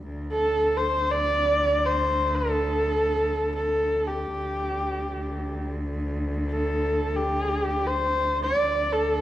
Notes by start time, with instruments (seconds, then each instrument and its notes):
0.05 cello D2
0.32 horsehead fiddle A4
0.77 horsehead fiddle C5
1.11 horsehead fiddle D5
1.85 horsehead fiddle C5
2.35 horsehead fiddle A4
3.55 horsehead fiddle A4
4.07 horsehead fiddle G4
4.33 cello D2
6.51 horsehead fiddle A4
7.16 horsehead fiddle G4
7.87 horsehead fiddle C5
8.43 horsehead fiddle D5
8.62 cello D2
8.93 horsehead fiddle A4